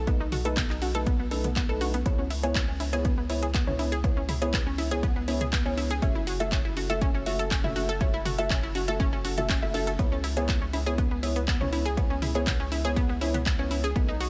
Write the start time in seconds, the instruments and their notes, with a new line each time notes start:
Already playing: analog synth bass B1
0.07 felt piano A3 D#4 B4, synth pluck B3, kick, closed hi-hat
0.20 synth pluck D#4
0.32 synth pluck F#4, mid tom, open hi-hat
0.45 felt piano A3 D#4 B4, synth pluck A4, closed hi-hat
0.57 synth pluck B3, kick, clap, closed hi-hat, mid tom
0.70 synth pluck D#4, clap
0.82 synth pluck F#4, open hi-hat, high conga
0.95 felt piano A3 D#4 B4, synth pluck A4, closed hi-hat
1.06 synth pluck B3, kick, closed hi-hat
1.20 synth pluck B3
1.31 felt piano A3 D#4 B4, synth pluck A4, open hi-hat, high conga
1.44 synth pluck B3, closed hi-hat, mid tom
1.56 synth pluck B3, kick, clap, closed hi-hat
1.69 felt piano A3 D#4 B4, synth pluck A4
1.81 synth pluck F#4, open hi-hat, high conga
1.94 synth pluck B3, closed hi-hat, high conga
2.06 analog synth bass C#2, felt piano B3 E4 C#5, synth pluck B3, kick, closed hi-hat
2.19 synth pluck C#4
2.30 synth pluck E4, open hi-hat
2.43 felt piano B3 E4 C#5, synth pluck G#4, closed hi-hat
2.55 synth pluck B3, kick, clap, closed hi-hat
2.68 synth pluck C#4
2.80 synth pluck E4, open hi-hat, high conga
2.93 felt piano B3 E4 C#5, synth pluck G#4, closed hi-hat
3.05 synth pluck B3, kick, closed hi-hat, high conga
3.18 synth pluck B3
3.29 felt piano B3 E4 C#5, synth pluck E4, open hi-hat
3.43 synth pluck G#4, closed hi-hat
3.54 synth pluck B3, kick, clap, closed hi-hat
3.67 felt piano B3 E4 C#5, synth pluck C#4, mid tom, high conga
3.79 synth pluck E4, open hi-hat, high conga
3.92 synth pluck G#4, closed hi-hat
4.04 felt piano B3 E4 C#5, synth pluck B3, kick, closed hi-hat
4.17 synth pluck C#4
4.29 synth pluck E4, mid tom, open hi-hat
4.42 felt piano B3 E4 C#5, synth pluck G#4, closed hi-hat
4.53 synth pluck B3, kick, clap, closed hi-hat, mid tom
4.67 synth pluck C#4
4.78 synth pluck E4, open hi-hat, high conga
4.91 felt piano B3 E4 C#5, synth pluck G#4, closed hi-hat
5.03 synth pluck B3, kick, closed hi-hat
5.16 synth pluck B3
5.28 felt piano B3 E4 C#5, synth pluck E4, open hi-hat, high conga
5.41 synth pluck G#4, closed hi-hat, mid tom
5.53 synth pluck B3, kick, clap, closed hi-hat
5.65 felt piano B3 E4 C#5, synth pluck C#4
5.77 synth pluck E4, open hi-hat, high conga
5.90 synth pluck G#4, closed hi-hat, high conga
6.02 analog synth bass F#1, felt piano A3 F#4 E5, synth pluck C#4, kick, closed hi-hat
6.15 synth pluck E4
6.27 synth pluck F#4, open hi-hat
6.40 felt piano A3 F#4 E5, synth pluck A4, closed hi-hat
6.52 synth pluck C#4, kick, clap, closed hi-hat
6.65 synth pluck E4
6.77 synth pluck F#4, open hi-hat, high conga
6.90 felt piano A3 F#4 E5, synth pluck A4, closed hi-hat
7.01 synth pluck C#4, kick, closed hi-hat, high conga
7.15 synth pluck C#4
7.26 felt piano A3 F#4 E5, synth pluck F#4, open hi-hat
7.39 synth pluck A4, closed hi-hat
7.51 synth pluck C#4, kick, clap, closed hi-hat
7.64 felt piano A3 F#4 E5, synth pluck E4, mid tom, high conga
7.76 synth pluck F#4, open hi-hat, high conga
7.89 synth pluck A4, closed hi-hat
8.01 felt piano A3 F#4 E5, synth pluck C#4, kick, closed hi-hat
8.14 synth pluck E4
8.25 synth pluck F#4, mid tom, open hi-hat
8.38 felt piano A3 F#4 E5, synth pluck A4, closed hi-hat
8.50 synth pluck C#4, kick, clap, closed hi-hat, mid tom
8.63 synth pluck E4
8.75 synth pluck F#4, open hi-hat, high conga
8.88 felt piano A3 F#4 E5, synth pluck A4, closed hi-hat
9.00 synth pluck C#4, kick, closed hi-hat
9.13 synth pluck C#4
9.25 synth pluck F#4, open hi-hat, high conga
9.38 felt piano A3 F#4 E5, synth pluck A4, closed hi-hat, mid tom
9.49 synth pluck C#4, kick, clap, closed hi-hat
9.62 felt piano A3 F#4 E5, synth pluck E4
9.74 felt piano A3 F#4 E5, synth pluck A4, open hi-hat, high conga
9.87 synth pluck A4, closed hi-hat, high conga
9.99 analog synth bass C#2, felt piano B3 E4 C#5, synth pluck B3, kick, closed hi-hat
10.12 synth pluck C#4
10.24 synth pluck E4, open hi-hat
10.37 felt piano B3 E4 C#5, synth pluck G#4, closed hi-hat
10.49 synth pluck B3, kick, clap, closed hi-hat
10.62 synth pluck C#4
10.73 synth pluck E4, open hi-hat, high conga
10.86 felt piano B3 E4 C#5, synth pluck G#4, closed hi-hat
10.98 synth pluck B3, kick, closed hi-hat, high conga
11.11 synth pluck B3
11.23 felt piano B3 E4 C#5, synth pluck E4, open hi-hat
11.36 synth pluck B3, closed hi-hat
11.48 synth pluck B3, kick, clap, closed hi-hat
11.61 felt piano B3 E4 C#5, synth pluck C#4, mid tom, high conga
11.73 synth pluck E4, open hi-hat, high conga
11.86 synth pluck G#4, closed hi-hat
11.97 synth pluck B3, felt piano B3 E4 C#5, kick, closed hi-hat
12.10 synth pluck C#4
12.22 synth pluck E4, mid tom, open hi-hat
12.35 felt piano B3 E4 C#5, synth pluck G#4, closed hi-hat
12.47 synth pluck B3, kick, clap, closed hi-hat, mid tom
12.60 synth pluck C#4
12.72 synth pluck E4, open hi-hat, high conga
12.85 felt piano B3 E4 C#5, synth pluck G#4, closed hi-hat
12.96 synth pluck B3, kick, closed hi-hat
13.09 synth pluck B3
13.21 felt piano B3 E4 C#5, synth pluck E4, open hi-hat, high conga
13.34 synth pluck B3, closed hi-hat, mid tom
13.46 synth pluck B3, kick, clap, closed hi-hat
13.59 felt piano B3 E4 C#5, synth pluck C#4
13.71 synth pluck E4, open hi-hat, high conga
13.84 synth pluck G#4, closed hi-hat, high conga
13.96 analog synth bass B1, felt piano A3 D#4 B4, synth pluck B3, kick, closed hi-hat
14.09 synth pluck D#4
14.20 synth pluck F#4, open hi-hat